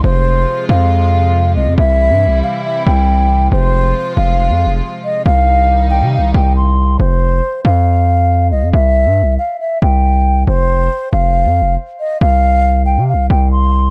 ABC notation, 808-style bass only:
X:1
M:4/4
L:1/16
Q:1/4=138
K:Fm
V:1 name="808-style bass" clef=bass
F,,,4 z2 F,,8 C,, F,, | C,,3 G,,3/2 C,,3/2 z4 C,,6 | F,,,4 z2 F,,,3 F,,3/2 F,,,3/2 z4 | C,,6- C,, C,3/2 C,,3/2 C,,6 |
F,,,4 z2 F,,8 C,, F,, | C,,3 G,,3/2 C,,3/2 z4 C,,6 | F,,,4 z2 F,,,3 F,,3/2 F,,,3/2 z4 | C,,6- C,, C,3/2 C,,3/2 C,,6 |]